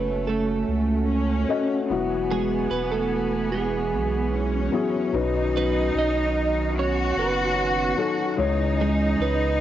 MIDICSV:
0, 0, Header, 1, 6, 480
1, 0, Start_track
1, 0, Tempo, 810811
1, 1125, Time_signature, 4, 2, 24, 8
1, 5687, End_track
2, 0, Start_track
2, 0, Title_t, "Clean electric guitar"
2, 0, Program_c, 0, 27
2, 0, Note_on_c, 0, 59, 65
2, 0, Note_on_c, 0, 71, 80
2, 145, Note_off_c, 0, 59, 0
2, 162, Note_on_c, 0, 69, 73
2, 173, Note_on_c, 0, 57, 62
2, 174, Note_off_c, 0, 71, 0
2, 859, Note_off_c, 0, 69, 0
2, 865, Note_off_c, 0, 57, 0
2, 1370, Note_on_c, 0, 68, 89
2, 1373, Note_on_c, 0, 56, 66
2, 1593, Note_off_c, 0, 56, 0
2, 1603, Note_on_c, 0, 71, 106
2, 1613, Note_off_c, 0, 68, 0
2, 1615, Note_on_c, 0, 59, 79
2, 1715, Note_off_c, 0, 71, 0
2, 1722, Note_off_c, 0, 59, 0
2, 1726, Note_on_c, 0, 69, 93
2, 1737, Note_on_c, 0, 57, 73
2, 2067, Note_off_c, 0, 57, 0
2, 2082, Note_off_c, 0, 69, 0
2, 2084, Note_on_c, 0, 68, 84
2, 2098, Note_on_c, 0, 56, 63
2, 2781, Note_off_c, 0, 68, 0
2, 2787, Note_off_c, 0, 56, 0
2, 3298, Note_on_c, 0, 71, 90
2, 3302, Note_on_c, 0, 59, 65
2, 3515, Note_off_c, 0, 71, 0
2, 3517, Note_off_c, 0, 59, 0
2, 3544, Note_on_c, 0, 63, 91
2, 3544, Note_on_c, 0, 75, 97
2, 3991, Note_off_c, 0, 63, 0
2, 4019, Note_off_c, 0, 75, 0
2, 4021, Note_on_c, 0, 61, 80
2, 4021, Note_on_c, 0, 73, 83
2, 4237, Note_off_c, 0, 61, 0
2, 4254, Note_off_c, 0, 73, 0
2, 4256, Note_on_c, 0, 59, 71
2, 4256, Note_on_c, 0, 71, 74
2, 4706, Note_off_c, 0, 71, 0
2, 4707, Note_off_c, 0, 59, 0
2, 5216, Note_on_c, 0, 68, 76
2, 5219, Note_on_c, 0, 56, 61
2, 5436, Note_off_c, 0, 56, 0
2, 5457, Note_off_c, 0, 68, 0
2, 5457, Note_on_c, 0, 71, 86
2, 5460, Note_on_c, 0, 59, 70
2, 5687, Note_off_c, 0, 59, 0
2, 5687, Note_off_c, 0, 71, 0
2, 5687, End_track
3, 0, Start_track
3, 0, Title_t, "Cello section"
3, 0, Program_c, 1, 48
3, 0, Note_on_c, 1, 57, 86
3, 621, Note_off_c, 1, 57, 0
3, 642, Note_on_c, 1, 61, 97
3, 1123, Note_off_c, 1, 61, 0
3, 1123, Note_on_c, 1, 59, 93
3, 2561, Note_on_c, 1, 61, 89
3, 2564, Note_off_c, 1, 59, 0
3, 3039, Note_on_c, 1, 63, 106
3, 3043, Note_off_c, 1, 61, 0
3, 3999, Note_on_c, 1, 66, 126
3, 4002, Note_off_c, 1, 63, 0
3, 4962, Note_off_c, 1, 66, 0
3, 4968, Note_on_c, 1, 63, 109
3, 5687, Note_off_c, 1, 63, 0
3, 5687, End_track
4, 0, Start_track
4, 0, Title_t, "Felt piano"
4, 0, Program_c, 2, 0
4, 0, Control_c, 2, 64, 127
4, 0, Note_on_c, 2, 57, 83
4, 0, Note_on_c, 2, 61, 75
4, 0, Note_on_c, 2, 66, 76
4, 0, Note_on_c, 2, 73, 94
4, 112, Note_off_c, 2, 57, 0
4, 114, Note_off_c, 2, 61, 0
4, 116, Note_off_c, 2, 66, 0
4, 118, Note_off_c, 2, 73, 0
4, 879, Note_on_c, 2, 57, 80
4, 881, Note_on_c, 2, 61, 82
4, 884, Note_on_c, 2, 66, 80
4, 889, Note_on_c, 2, 75, 98
4, 1110, Note_off_c, 2, 57, 0
4, 1111, Note_off_c, 2, 61, 0
4, 1112, Note_off_c, 2, 66, 0
4, 1115, Note_off_c, 2, 75, 0
4, 1122, Note_on_c, 2, 54, 82
4, 1124, Note_on_c, 2, 59, 75
4, 1128, Note_on_c, 2, 64, 82
4, 1131, Control_c, 2, 64, 0
4, 1132, Note_on_c, 2, 66, 97
4, 1221, Control_c, 2, 64, 127
4, 2035, Note_off_c, 2, 54, 0
4, 2036, Note_off_c, 2, 59, 0
4, 2038, Note_off_c, 2, 64, 0
4, 2040, Note_off_c, 2, 66, 0
4, 2794, Note_on_c, 2, 54, 97
4, 2798, Note_on_c, 2, 59, 79
4, 2800, Note_on_c, 2, 64, 78
4, 2806, Note_on_c, 2, 68, 103
4, 3025, Note_off_c, 2, 54, 0
4, 3029, Note_off_c, 2, 59, 0
4, 3030, Note_off_c, 2, 64, 0
4, 3033, Note_off_c, 2, 68, 0
4, 3034, Note_on_c, 2, 54, 95
4, 3039, Note_on_c, 2, 47, 74
4, 3039, Note_on_c, 2, 61, 85
4, 3042, Note_on_c, 2, 63, 88
4, 3046, Note_on_c, 2, 71, 92
4, 3052, Control_c, 2, 64, 0
4, 3146, Control_c, 2, 64, 127
4, 3738, Note_off_c, 2, 47, 0
4, 3951, Note_off_c, 2, 54, 0
4, 3954, Note_off_c, 2, 61, 0
4, 3955, Note_off_c, 2, 63, 0
4, 3958, Note_off_c, 2, 71, 0
4, 4715, Note_on_c, 2, 54, 76
4, 4719, Note_on_c, 2, 61, 64
4, 4722, Note_on_c, 2, 63, 75
4, 4727, Note_on_c, 2, 69, 91
4, 4948, Note_off_c, 2, 54, 0
4, 4950, Note_off_c, 2, 61, 0
4, 4951, Note_off_c, 2, 63, 0
4, 4954, Note_off_c, 2, 69, 0
4, 4955, Note_on_c, 2, 56, 92
4, 4959, Note_on_c, 2, 61, 76
4, 4960, Note_on_c, 2, 49, 72
4, 4962, Note_on_c, 2, 52, 75
4, 4968, Note_on_c, 2, 73, 96
4, 4973, Control_c, 2, 64, 0
4, 5066, Control_c, 2, 64, 127
4, 5658, Note_off_c, 2, 49, 0
4, 5687, Note_off_c, 2, 52, 0
4, 5687, Note_off_c, 2, 56, 0
4, 5687, Note_off_c, 2, 61, 0
4, 5687, Note_off_c, 2, 73, 0
4, 5687, End_track
5, 0, Start_track
5, 0, Title_t, "Analog synth pad"
5, 0, Program_c, 3, 89
5, 0, Note_on_c, 3, 57, 74
5, 0, Note_on_c, 3, 61, 72
5, 0, Note_on_c, 3, 66, 79
5, 1105, Note_off_c, 3, 61, 0
5, 1106, Note_off_c, 3, 57, 0
5, 1126, Note_on_c, 3, 52, 77
5, 1127, Note_on_c, 3, 80, 81
5, 1128, Note_on_c, 3, 59, 71
5, 3021, Note_off_c, 3, 66, 0
5, 3026, Note_off_c, 3, 52, 0
5, 3027, Note_off_c, 3, 59, 0
5, 3027, Note_off_c, 3, 80, 0
5, 3041, Note_on_c, 3, 51, 78
5, 3041, Note_on_c, 3, 61, 81
5, 3043, Note_on_c, 3, 59, 69
5, 4943, Note_off_c, 3, 51, 0
5, 4945, Note_off_c, 3, 59, 0
5, 4965, Note_on_c, 3, 68, 86
5, 4966, Note_on_c, 3, 49, 80
5, 4966, Note_on_c, 3, 52, 75
5, 5687, Note_off_c, 3, 49, 0
5, 5687, Note_off_c, 3, 52, 0
5, 5687, Note_off_c, 3, 61, 0
5, 5687, Note_off_c, 3, 68, 0
5, 5687, End_track
6, 0, Start_track
6, 0, Title_t, "Sub bass"
6, 0, Program_c, 4, 38
6, 0, Note_on_c, 4, 30, 103
6, 380, Note_off_c, 4, 30, 0
6, 404, Note_on_c, 4, 37, 93
6, 860, Note_off_c, 4, 37, 0
6, 1124, Note_on_c, 4, 28, 102
6, 1581, Note_off_c, 4, 28, 0
6, 1600, Note_on_c, 4, 28, 95
6, 2322, Note_on_c, 4, 35, 82
6, 2331, Note_off_c, 4, 28, 0
6, 2780, Note_off_c, 4, 35, 0
6, 3041, Note_on_c, 4, 35, 108
6, 3499, Note_off_c, 4, 35, 0
6, 3521, Note_on_c, 4, 35, 89
6, 4219, Note_off_c, 4, 35, 0
6, 4242, Note_on_c, 4, 30, 102
6, 4700, Note_off_c, 4, 30, 0
6, 4962, Note_on_c, 4, 37, 109
6, 5420, Note_off_c, 4, 37, 0
6, 5444, Note_on_c, 4, 37, 90
6, 5687, Note_off_c, 4, 37, 0
6, 5687, End_track
0, 0, End_of_file